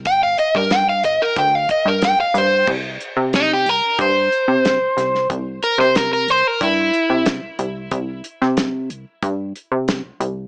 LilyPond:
<<
  \new Staff \with { instrumentName = "Overdriven electric guitar" } { \time 4/4 \key c \mixolydian \tempo 4 = 92 g''16 f''16 ees''16 bes'16 g''16 f''16 ees''16 bes'16 g''16 f''16 ees''16 bes'16 g''16 f''16 c''8 | r4 ees'16 g'16 bes'8 c''2 | r8 bes'16 c''16 bes'16 bes'16 c''16 bes'16 e'4 r4 | r1 | }
  \new Staff \with { instrumentName = "Analog synth bass" } { \clef bass \time 4/4 \key c \mixolydian g,,8 r16 g,8. g,,16 r16 d,8 r16 g,8 g,,16 g,8 | c,8 r16 c8. c,16 r16 g,8 r16 c8 c,16 c,8 | c,8 r16 c8. c,16 r16 g,8 r16 c8 c,16 c,8 | c,8 r16 c8. c,16 r16 g,8 r16 c8 r16 c,8 | }
  \new DrumStaff \with { instrumentName = "Drums" } \drummode { \time 4/4 <hh bd>8 hh16 bd16 <hh sn>8 hh8 <hh bd>8 <hh bd>8 <hh sn>8 <hh sn>8 | <cymc bd>8 hh8 <hh sn>8 hh8 <hh bd>8 hh8 <hh sn>8 <hh sn>16 sn16 | <hh bd>8 hh16 sn16 <hh sn>8 hh8 <hh bd>8 hh8 <hh sn>8 hh8 | <hh bd>8 hh16 sn16 <hh sn>8 hh8 <hh bd>8 hh8 <hh sn>8 hh8 | }
>>